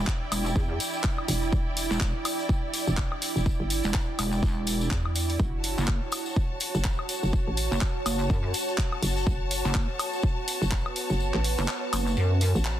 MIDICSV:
0, 0, Header, 1, 6, 480
1, 0, Start_track
1, 0, Tempo, 483871
1, 1514, Time_signature, 4, 2, 24, 8
1, 12697, End_track
2, 0, Start_track
2, 0, Title_t, "String section"
2, 0, Program_c, 0, 48
2, 0, Note_on_c, 0, 64, 78
2, 0, Note_on_c, 0, 74, 76
2, 0, Note_on_c, 0, 79, 68
2, 5353, Note_off_c, 0, 74, 0
2, 5354, Note_off_c, 0, 79, 0
2, 5356, Note_on_c, 0, 66, 72
2, 5528, Note_on_c, 0, 73, 71
2, 5537, Note_on_c, 0, 81, 90
2, 6134, Note_off_c, 0, 64, 0
2, 12697, Note_off_c, 0, 66, 0
2, 12697, Note_off_c, 0, 73, 0
2, 12697, Note_off_c, 0, 81, 0
2, 12697, End_track
3, 0, Start_track
3, 0, Title_t, "Ambient pad"
3, 0, Program_c, 1, 92
3, 0, Note_on_c, 1, 64, 85
3, 0, Note_on_c, 1, 74, 77
3, 0, Note_on_c, 1, 79, 93
3, 5314, Note_off_c, 1, 64, 0
3, 5314, Note_off_c, 1, 74, 0
3, 5314, Note_off_c, 1, 79, 0
3, 5355, Note_on_c, 1, 66, 85
3, 5356, Note_on_c, 1, 73, 78
3, 5356, Note_on_c, 1, 81, 93
3, 9156, Note_off_c, 1, 73, 0
3, 9196, Note_on_c, 1, 71, 79
3, 12697, Note_off_c, 1, 66, 0
3, 12697, Note_off_c, 1, 71, 0
3, 12697, Note_off_c, 1, 81, 0
3, 12697, End_track
4, 0, Start_track
4, 0, Title_t, "FM bass"
4, 0, Program_c, 2, 39
4, 1273, Note_on_c, 2, 28, 105
4, 1497, Note_off_c, 2, 28, 0
4, 1512, Note_on_c, 2, 28, 98
4, 1870, Note_off_c, 2, 28, 0
4, 2852, Note_on_c, 2, 28, 101
4, 3070, Note_off_c, 2, 28, 0
4, 3331, Note_on_c, 2, 28, 97
4, 3550, Note_off_c, 2, 28, 0
4, 3571, Note_on_c, 2, 31, 94
4, 3790, Note_off_c, 2, 31, 0
4, 4872, Note_on_c, 2, 40, 100
4, 5337, Note_off_c, 2, 40, 0
4, 5352, Note_on_c, 2, 30, 99
4, 5710, Note_off_c, 2, 30, 0
4, 6694, Note_on_c, 2, 30, 99
4, 6911, Note_off_c, 2, 30, 0
4, 7174, Note_on_c, 2, 30, 95
4, 7391, Note_off_c, 2, 30, 0
4, 7415, Note_on_c, 2, 33, 93
4, 7632, Note_off_c, 2, 33, 0
4, 8952, Note_on_c, 2, 30, 102
4, 9177, Note_off_c, 2, 30, 0
4, 9193, Note_on_c, 2, 30, 100
4, 9550, Note_off_c, 2, 30, 0
4, 10532, Note_on_c, 2, 30, 99
4, 10750, Note_off_c, 2, 30, 0
4, 11012, Note_on_c, 2, 30, 92
4, 11230, Note_off_c, 2, 30, 0
4, 11251, Note_on_c, 2, 33, 94
4, 11470, Note_off_c, 2, 33, 0
4, 12452, Note_on_c, 2, 33, 99
4, 12697, Note_off_c, 2, 33, 0
4, 12697, End_track
5, 0, Start_track
5, 0, Title_t, "Wobble bass"
5, 0, Program_c, 3, 39
5, 313, Note_on_c, 3, 28, 96
5, 537, Note_off_c, 3, 28, 0
5, 553, Note_on_c, 3, 40, 97
5, 777, Note_off_c, 3, 40, 0
5, 1892, Note_on_c, 3, 28, 100
5, 2110, Note_off_c, 3, 28, 0
5, 3812, Note_on_c, 3, 28, 99
5, 3897, Note_off_c, 3, 28, 0
5, 4152, Note_on_c, 3, 28, 96
5, 4377, Note_off_c, 3, 28, 0
5, 4392, Note_on_c, 3, 28, 93
5, 4856, Note_off_c, 3, 28, 0
5, 5732, Note_on_c, 3, 30, 99
5, 5950, Note_off_c, 3, 30, 0
5, 7653, Note_on_c, 3, 30, 98
5, 7737, Note_off_c, 3, 30, 0
5, 7992, Note_on_c, 3, 30, 98
5, 8217, Note_off_c, 3, 30, 0
5, 8233, Note_on_c, 3, 42, 94
5, 8457, Note_off_c, 3, 42, 0
5, 9572, Note_on_c, 3, 30, 99
5, 9790, Note_off_c, 3, 30, 0
5, 11492, Note_on_c, 3, 30, 96
5, 11577, Note_off_c, 3, 30, 0
5, 11831, Note_on_c, 3, 30, 98
5, 12056, Note_off_c, 3, 30, 0
5, 12072, Note_on_c, 3, 42, 97
5, 12430, Note_off_c, 3, 42, 0
5, 12697, End_track
6, 0, Start_track
6, 0, Title_t, "Drums"
6, 63, Note_on_c, 9, 54, 41
6, 69, Note_on_c, 9, 39, 127
6, 73, Note_on_c, 9, 36, 127
6, 162, Note_off_c, 9, 54, 0
6, 169, Note_off_c, 9, 39, 0
6, 172, Note_off_c, 9, 36, 0
6, 316, Note_on_c, 9, 46, 114
6, 316, Note_on_c, 9, 76, 68
6, 317, Note_on_c, 9, 54, 93
6, 415, Note_off_c, 9, 46, 0
6, 415, Note_off_c, 9, 76, 0
6, 416, Note_off_c, 9, 54, 0
6, 459, Note_on_c, 9, 54, 60
6, 553, Note_on_c, 9, 36, 116
6, 558, Note_off_c, 9, 54, 0
6, 652, Note_off_c, 9, 36, 0
6, 794, Note_on_c, 9, 46, 109
6, 794, Note_on_c, 9, 54, 100
6, 893, Note_off_c, 9, 54, 0
6, 894, Note_off_c, 9, 46, 0
6, 927, Note_on_c, 9, 54, 56
6, 1027, Note_off_c, 9, 54, 0
6, 1028, Note_on_c, 9, 39, 123
6, 1033, Note_on_c, 9, 36, 127
6, 1038, Note_on_c, 9, 54, 43
6, 1128, Note_off_c, 9, 39, 0
6, 1132, Note_off_c, 9, 36, 0
6, 1138, Note_off_c, 9, 54, 0
6, 1174, Note_on_c, 9, 76, 68
6, 1272, Note_on_c, 9, 54, 100
6, 1274, Note_off_c, 9, 76, 0
6, 1275, Note_on_c, 9, 46, 106
6, 1371, Note_off_c, 9, 54, 0
6, 1374, Note_off_c, 9, 46, 0
6, 1417, Note_on_c, 9, 54, 50
6, 1513, Note_on_c, 9, 36, 125
6, 1516, Note_off_c, 9, 54, 0
6, 1516, Note_on_c, 9, 54, 42
6, 1612, Note_off_c, 9, 36, 0
6, 1616, Note_off_c, 9, 54, 0
6, 1752, Note_on_c, 9, 54, 100
6, 1754, Note_on_c, 9, 46, 115
6, 1851, Note_off_c, 9, 54, 0
6, 1853, Note_off_c, 9, 46, 0
6, 1900, Note_on_c, 9, 54, 54
6, 1989, Note_on_c, 9, 39, 122
6, 1993, Note_on_c, 9, 36, 127
6, 1999, Note_off_c, 9, 54, 0
6, 2088, Note_off_c, 9, 39, 0
6, 2092, Note_off_c, 9, 36, 0
6, 2231, Note_on_c, 9, 54, 105
6, 2234, Note_on_c, 9, 46, 117
6, 2234, Note_on_c, 9, 76, 65
6, 2330, Note_off_c, 9, 54, 0
6, 2333, Note_off_c, 9, 46, 0
6, 2333, Note_off_c, 9, 76, 0
6, 2372, Note_on_c, 9, 54, 51
6, 2471, Note_off_c, 9, 54, 0
6, 2473, Note_on_c, 9, 36, 120
6, 2480, Note_on_c, 9, 54, 41
6, 2572, Note_off_c, 9, 36, 0
6, 2579, Note_off_c, 9, 54, 0
6, 2714, Note_on_c, 9, 46, 112
6, 2719, Note_on_c, 9, 54, 98
6, 2813, Note_off_c, 9, 46, 0
6, 2818, Note_off_c, 9, 54, 0
6, 2850, Note_on_c, 9, 54, 53
6, 2948, Note_on_c, 9, 39, 124
6, 2950, Note_off_c, 9, 54, 0
6, 2952, Note_on_c, 9, 36, 125
6, 2953, Note_on_c, 9, 54, 39
6, 3048, Note_off_c, 9, 39, 0
6, 3052, Note_off_c, 9, 36, 0
6, 3053, Note_off_c, 9, 54, 0
6, 3093, Note_on_c, 9, 76, 63
6, 3192, Note_off_c, 9, 76, 0
6, 3194, Note_on_c, 9, 46, 111
6, 3195, Note_on_c, 9, 54, 91
6, 3293, Note_off_c, 9, 46, 0
6, 3295, Note_off_c, 9, 54, 0
6, 3336, Note_on_c, 9, 54, 50
6, 3432, Note_off_c, 9, 54, 0
6, 3432, Note_on_c, 9, 36, 122
6, 3432, Note_on_c, 9, 54, 45
6, 3531, Note_off_c, 9, 36, 0
6, 3531, Note_off_c, 9, 54, 0
6, 3673, Note_on_c, 9, 46, 113
6, 3675, Note_on_c, 9, 54, 103
6, 3772, Note_off_c, 9, 46, 0
6, 3774, Note_off_c, 9, 54, 0
6, 3806, Note_on_c, 9, 54, 52
6, 3905, Note_off_c, 9, 54, 0
6, 3908, Note_on_c, 9, 39, 121
6, 3912, Note_on_c, 9, 36, 125
6, 3920, Note_on_c, 9, 54, 45
6, 4007, Note_off_c, 9, 39, 0
6, 4011, Note_off_c, 9, 36, 0
6, 4019, Note_off_c, 9, 54, 0
6, 4154, Note_on_c, 9, 46, 114
6, 4154, Note_on_c, 9, 54, 101
6, 4154, Note_on_c, 9, 76, 65
6, 4253, Note_off_c, 9, 46, 0
6, 4253, Note_off_c, 9, 54, 0
6, 4253, Note_off_c, 9, 76, 0
6, 4289, Note_on_c, 9, 54, 57
6, 4389, Note_off_c, 9, 54, 0
6, 4392, Note_on_c, 9, 36, 122
6, 4398, Note_on_c, 9, 54, 41
6, 4491, Note_off_c, 9, 36, 0
6, 4497, Note_off_c, 9, 54, 0
6, 4631, Note_on_c, 9, 54, 99
6, 4634, Note_on_c, 9, 46, 109
6, 4731, Note_off_c, 9, 54, 0
6, 4734, Note_off_c, 9, 46, 0
6, 4772, Note_on_c, 9, 54, 59
6, 4869, Note_on_c, 9, 39, 119
6, 4871, Note_off_c, 9, 54, 0
6, 4872, Note_on_c, 9, 36, 127
6, 4968, Note_off_c, 9, 39, 0
6, 4972, Note_off_c, 9, 36, 0
6, 5014, Note_on_c, 9, 76, 64
6, 5113, Note_off_c, 9, 76, 0
6, 5113, Note_on_c, 9, 54, 93
6, 5115, Note_on_c, 9, 46, 108
6, 5212, Note_off_c, 9, 54, 0
6, 5214, Note_off_c, 9, 46, 0
6, 5255, Note_on_c, 9, 46, 65
6, 5256, Note_on_c, 9, 54, 55
6, 5351, Note_off_c, 9, 54, 0
6, 5351, Note_on_c, 9, 54, 43
6, 5353, Note_on_c, 9, 36, 122
6, 5354, Note_off_c, 9, 46, 0
6, 5450, Note_off_c, 9, 54, 0
6, 5452, Note_off_c, 9, 36, 0
6, 5591, Note_on_c, 9, 54, 93
6, 5595, Note_on_c, 9, 46, 107
6, 5691, Note_off_c, 9, 54, 0
6, 5694, Note_off_c, 9, 46, 0
6, 5733, Note_on_c, 9, 54, 54
6, 5829, Note_on_c, 9, 39, 116
6, 5832, Note_off_c, 9, 54, 0
6, 5833, Note_on_c, 9, 36, 119
6, 5928, Note_off_c, 9, 39, 0
6, 5932, Note_off_c, 9, 36, 0
6, 6069, Note_on_c, 9, 54, 96
6, 6075, Note_on_c, 9, 46, 109
6, 6075, Note_on_c, 9, 76, 65
6, 6169, Note_off_c, 9, 54, 0
6, 6175, Note_off_c, 9, 46, 0
6, 6175, Note_off_c, 9, 76, 0
6, 6209, Note_on_c, 9, 54, 56
6, 6308, Note_off_c, 9, 54, 0
6, 6313, Note_on_c, 9, 36, 116
6, 6412, Note_off_c, 9, 36, 0
6, 6549, Note_on_c, 9, 54, 94
6, 6554, Note_on_c, 9, 46, 109
6, 6648, Note_off_c, 9, 54, 0
6, 6654, Note_off_c, 9, 46, 0
6, 6692, Note_on_c, 9, 54, 55
6, 6789, Note_on_c, 9, 39, 121
6, 6791, Note_off_c, 9, 54, 0
6, 6793, Note_on_c, 9, 36, 124
6, 6802, Note_on_c, 9, 54, 42
6, 6888, Note_off_c, 9, 39, 0
6, 6892, Note_off_c, 9, 36, 0
6, 6901, Note_off_c, 9, 54, 0
6, 6933, Note_on_c, 9, 76, 65
6, 7031, Note_on_c, 9, 54, 93
6, 7032, Note_off_c, 9, 76, 0
6, 7033, Note_on_c, 9, 46, 108
6, 7130, Note_off_c, 9, 54, 0
6, 7132, Note_off_c, 9, 46, 0
6, 7174, Note_on_c, 9, 54, 53
6, 7273, Note_off_c, 9, 54, 0
6, 7273, Note_on_c, 9, 36, 116
6, 7275, Note_on_c, 9, 54, 37
6, 7372, Note_off_c, 9, 36, 0
6, 7374, Note_off_c, 9, 54, 0
6, 7510, Note_on_c, 9, 54, 85
6, 7514, Note_on_c, 9, 46, 106
6, 7609, Note_off_c, 9, 54, 0
6, 7613, Note_off_c, 9, 46, 0
6, 7663, Note_on_c, 9, 54, 48
6, 7749, Note_on_c, 9, 39, 113
6, 7753, Note_on_c, 9, 36, 117
6, 7762, Note_off_c, 9, 54, 0
6, 7848, Note_off_c, 9, 39, 0
6, 7852, Note_off_c, 9, 36, 0
6, 7994, Note_on_c, 9, 46, 107
6, 7994, Note_on_c, 9, 76, 68
6, 7998, Note_on_c, 9, 54, 99
6, 8094, Note_off_c, 9, 46, 0
6, 8094, Note_off_c, 9, 76, 0
6, 8098, Note_off_c, 9, 54, 0
6, 8126, Note_on_c, 9, 54, 50
6, 8225, Note_off_c, 9, 54, 0
6, 8233, Note_on_c, 9, 36, 109
6, 8239, Note_on_c, 9, 54, 36
6, 8332, Note_off_c, 9, 36, 0
6, 8338, Note_off_c, 9, 54, 0
6, 8471, Note_on_c, 9, 54, 99
6, 8474, Note_on_c, 9, 46, 101
6, 8570, Note_off_c, 9, 54, 0
6, 8574, Note_off_c, 9, 46, 0
6, 8615, Note_on_c, 9, 54, 50
6, 8709, Note_on_c, 9, 39, 116
6, 8713, Note_on_c, 9, 36, 118
6, 8714, Note_off_c, 9, 54, 0
6, 8808, Note_off_c, 9, 39, 0
6, 8812, Note_off_c, 9, 36, 0
6, 8853, Note_on_c, 9, 76, 67
6, 8952, Note_off_c, 9, 76, 0
6, 8953, Note_on_c, 9, 46, 104
6, 8961, Note_on_c, 9, 54, 80
6, 9052, Note_off_c, 9, 46, 0
6, 9060, Note_off_c, 9, 54, 0
6, 9092, Note_on_c, 9, 54, 54
6, 9189, Note_off_c, 9, 54, 0
6, 9189, Note_on_c, 9, 54, 42
6, 9193, Note_on_c, 9, 36, 115
6, 9289, Note_off_c, 9, 54, 0
6, 9292, Note_off_c, 9, 36, 0
6, 9433, Note_on_c, 9, 54, 89
6, 9434, Note_on_c, 9, 46, 103
6, 9532, Note_off_c, 9, 54, 0
6, 9533, Note_off_c, 9, 46, 0
6, 9576, Note_on_c, 9, 54, 51
6, 9668, Note_on_c, 9, 39, 118
6, 9672, Note_on_c, 9, 36, 120
6, 9673, Note_off_c, 9, 54, 0
6, 9673, Note_on_c, 9, 54, 38
6, 9767, Note_off_c, 9, 39, 0
6, 9772, Note_off_c, 9, 36, 0
6, 9773, Note_off_c, 9, 54, 0
6, 9914, Note_on_c, 9, 46, 104
6, 9914, Note_on_c, 9, 76, 70
6, 9918, Note_on_c, 9, 54, 89
6, 10014, Note_off_c, 9, 46, 0
6, 10014, Note_off_c, 9, 76, 0
6, 10017, Note_off_c, 9, 54, 0
6, 10051, Note_on_c, 9, 54, 49
6, 10142, Note_off_c, 9, 54, 0
6, 10142, Note_on_c, 9, 54, 35
6, 10152, Note_on_c, 9, 36, 112
6, 10241, Note_off_c, 9, 54, 0
6, 10252, Note_off_c, 9, 36, 0
6, 10394, Note_on_c, 9, 46, 99
6, 10395, Note_on_c, 9, 54, 92
6, 10493, Note_off_c, 9, 46, 0
6, 10494, Note_off_c, 9, 54, 0
6, 10539, Note_on_c, 9, 54, 50
6, 10628, Note_on_c, 9, 39, 117
6, 10632, Note_on_c, 9, 36, 114
6, 10635, Note_off_c, 9, 54, 0
6, 10635, Note_on_c, 9, 54, 38
6, 10727, Note_off_c, 9, 39, 0
6, 10732, Note_off_c, 9, 36, 0
6, 10735, Note_off_c, 9, 54, 0
6, 10773, Note_on_c, 9, 76, 68
6, 10872, Note_off_c, 9, 76, 0
6, 10872, Note_on_c, 9, 46, 101
6, 10873, Note_on_c, 9, 54, 90
6, 10971, Note_off_c, 9, 46, 0
6, 10972, Note_off_c, 9, 54, 0
6, 11011, Note_on_c, 9, 54, 47
6, 11110, Note_off_c, 9, 54, 0
6, 11112, Note_on_c, 9, 54, 40
6, 11211, Note_off_c, 9, 54, 0
6, 11248, Note_on_c, 9, 39, 37
6, 11347, Note_off_c, 9, 39, 0
6, 11353, Note_on_c, 9, 46, 107
6, 11358, Note_on_c, 9, 54, 81
6, 11452, Note_off_c, 9, 46, 0
6, 11457, Note_off_c, 9, 54, 0
6, 11490, Note_on_c, 9, 54, 48
6, 11588, Note_on_c, 9, 39, 124
6, 11589, Note_off_c, 9, 54, 0
6, 11594, Note_on_c, 9, 54, 36
6, 11687, Note_off_c, 9, 39, 0
6, 11693, Note_off_c, 9, 54, 0
6, 11832, Note_on_c, 9, 46, 106
6, 11832, Note_on_c, 9, 76, 72
6, 11835, Note_on_c, 9, 54, 95
6, 11931, Note_off_c, 9, 46, 0
6, 11931, Note_off_c, 9, 76, 0
6, 11934, Note_off_c, 9, 54, 0
6, 11976, Note_on_c, 9, 54, 47
6, 12072, Note_off_c, 9, 54, 0
6, 12072, Note_on_c, 9, 54, 39
6, 12171, Note_off_c, 9, 54, 0
6, 12310, Note_on_c, 9, 54, 90
6, 12312, Note_on_c, 9, 46, 101
6, 12409, Note_off_c, 9, 54, 0
6, 12411, Note_off_c, 9, 46, 0
6, 12455, Note_on_c, 9, 54, 51
6, 12548, Note_off_c, 9, 54, 0
6, 12548, Note_on_c, 9, 39, 126
6, 12548, Note_on_c, 9, 54, 39
6, 12647, Note_off_c, 9, 39, 0
6, 12647, Note_off_c, 9, 54, 0
6, 12697, End_track
0, 0, End_of_file